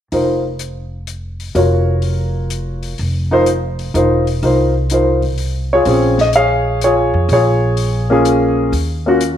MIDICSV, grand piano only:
0, 0, Header, 1, 2, 480
1, 0, Start_track
1, 0, Key_signature, -5, "minor"
1, 0, Tempo, 477859
1, 126, Time_signature, 3, 2, 24, 8
1, 9416, End_track
2, 0, Start_track
2, 0, Title_t, "Grand piano"
2, 0, Program_c, 0, 0
2, 121, Note_on_c, 0, 63, 43
2, 124, Note_on_c, 0, 65, 40
2, 135, Note_on_c, 0, 72, 44
2, 137, Note_on_c, 0, 70, 38
2, 415, Note_off_c, 0, 63, 0
2, 417, Note_off_c, 0, 65, 0
2, 422, Note_off_c, 0, 72, 0
2, 424, Note_off_c, 0, 70, 0
2, 1555, Note_on_c, 0, 65, 49
2, 1560, Note_on_c, 0, 66, 44
2, 1566, Note_on_c, 0, 70, 47
2, 1571, Note_on_c, 0, 73, 52
2, 2907, Note_off_c, 0, 65, 0
2, 2910, Note_off_c, 0, 66, 0
2, 2913, Note_off_c, 0, 70, 0
2, 2916, Note_off_c, 0, 73, 0
2, 3327, Note_on_c, 0, 63, 64
2, 3336, Note_on_c, 0, 65, 61
2, 3339, Note_on_c, 0, 70, 59
2, 3346, Note_on_c, 0, 72, 76
2, 3469, Note_off_c, 0, 63, 0
2, 3473, Note_off_c, 0, 65, 0
2, 3475, Note_off_c, 0, 70, 0
2, 3478, Note_off_c, 0, 72, 0
2, 3960, Note_on_c, 0, 63, 54
2, 3972, Note_on_c, 0, 65, 49
2, 3973, Note_on_c, 0, 70, 45
2, 3980, Note_on_c, 0, 72, 55
2, 4255, Note_off_c, 0, 63, 0
2, 4261, Note_off_c, 0, 65, 0
2, 4262, Note_off_c, 0, 70, 0
2, 4265, Note_off_c, 0, 72, 0
2, 4450, Note_on_c, 0, 63, 46
2, 4457, Note_on_c, 0, 65, 46
2, 4459, Note_on_c, 0, 70, 44
2, 4471, Note_on_c, 0, 72, 54
2, 4740, Note_off_c, 0, 63, 0
2, 4744, Note_off_c, 0, 65, 0
2, 4745, Note_off_c, 0, 70, 0
2, 4751, Note_off_c, 0, 72, 0
2, 4935, Note_on_c, 0, 63, 43
2, 4941, Note_on_c, 0, 65, 43
2, 4947, Note_on_c, 0, 70, 43
2, 4953, Note_on_c, 0, 72, 52
2, 5222, Note_off_c, 0, 63, 0
2, 5226, Note_off_c, 0, 65, 0
2, 5229, Note_off_c, 0, 70, 0
2, 5232, Note_off_c, 0, 72, 0
2, 5755, Note_on_c, 0, 73, 76
2, 5762, Note_on_c, 0, 65, 58
2, 5770, Note_on_c, 0, 68, 50
2, 5883, Note_off_c, 0, 65, 0
2, 5890, Note_off_c, 0, 68, 0
2, 5890, Note_on_c, 0, 60, 49
2, 5897, Note_on_c, 0, 61, 44
2, 5898, Note_on_c, 0, 65, 43
2, 5905, Note_on_c, 0, 68, 54
2, 6180, Note_off_c, 0, 60, 0
2, 6184, Note_off_c, 0, 61, 0
2, 6184, Note_off_c, 0, 65, 0
2, 6188, Note_off_c, 0, 68, 0
2, 6232, Note_off_c, 0, 73, 0
2, 6237, Note_on_c, 0, 75, 70
2, 6372, Note_off_c, 0, 75, 0
2, 6384, Note_on_c, 0, 77, 93
2, 6390, Note_on_c, 0, 73, 68
2, 6392, Note_on_c, 0, 68, 63
2, 6822, Note_off_c, 0, 77, 0
2, 6857, Note_off_c, 0, 73, 0
2, 6858, Note_off_c, 0, 68, 0
2, 6872, Note_on_c, 0, 73, 73
2, 6873, Note_on_c, 0, 68, 56
2, 6875, Note_on_c, 0, 65, 59
2, 7345, Note_off_c, 0, 65, 0
2, 7345, Note_off_c, 0, 73, 0
2, 7347, Note_off_c, 0, 68, 0
2, 7360, Note_on_c, 0, 65, 54
2, 7360, Note_on_c, 0, 73, 77
2, 7362, Note_on_c, 0, 68, 59
2, 8130, Note_off_c, 0, 65, 0
2, 8135, Note_on_c, 0, 58, 67
2, 8141, Note_off_c, 0, 68, 0
2, 8144, Note_on_c, 0, 61, 64
2, 8145, Note_on_c, 0, 65, 61
2, 8156, Note_on_c, 0, 68, 75
2, 8588, Note_off_c, 0, 73, 0
2, 8737, Note_off_c, 0, 58, 0
2, 8742, Note_off_c, 0, 61, 0
2, 8742, Note_off_c, 0, 65, 0
2, 8748, Note_off_c, 0, 68, 0
2, 9103, Note_on_c, 0, 58, 61
2, 9111, Note_on_c, 0, 65, 54
2, 9112, Note_on_c, 0, 61, 55
2, 9122, Note_on_c, 0, 66, 69
2, 9237, Note_off_c, 0, 58, 0
2, 9241, Note_off_c, 0, 61, 0
2, 9241, Note_off_c, 0, 65, 0
2, 9246, Note_off_c, 0, 66, 0
2, 9416, End_track
0, 0, End_of_file